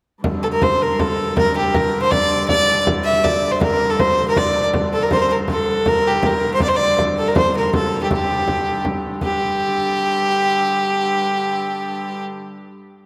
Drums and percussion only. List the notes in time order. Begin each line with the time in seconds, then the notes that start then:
0.24 frame drum
0.43 frame drum
0.62 frame drum
0.99 frame drum
1.18 frame drum
1.37 frame drum
1.56 frame drum
1.74 frame drum
2.12 frame drum
2.31 frame drum
2.49 frame drum
2.69 frame drum
2.87 frame drum
3.24 frame drum
3.43 frame drum
3.61 frame drum
3.99 frame drum
4.18 frame drum
4.36 frame drum
4.74 frame drum
4.93 frame drum
5.11 frame drum
5.48 frame drum
5.67 frame drum
5.86 frame drum
6.05 frame drum
6.23 frame drum
6.60 frame drum
6.80 frame drum
6.98 frame drum
7.17 frame drum
7.36 frame drum
7.74 frame drum
7.92 frame drum
8.11 frame drum
8.48 frame drum
8.66 frame drum
8.85 frame drum
9.21 frame drum